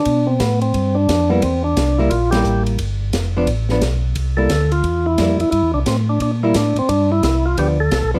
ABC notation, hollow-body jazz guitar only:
X:1
M:4/4
L:1/8
Q:"Swing" 1/4=176
K:C
V:1 name="Hollow-body jazz guitar"
z6 z [G,_B,E] | z3 [G,_B,E] z [G,B,E]3 | z3 [F,B,D] z [F,B,D] z2 | z [G,_B,E] z4 [G,B,E] z |
z4 z [G,_B,E] z2 | z4 [F,B,D] z2 [F,B,D] |]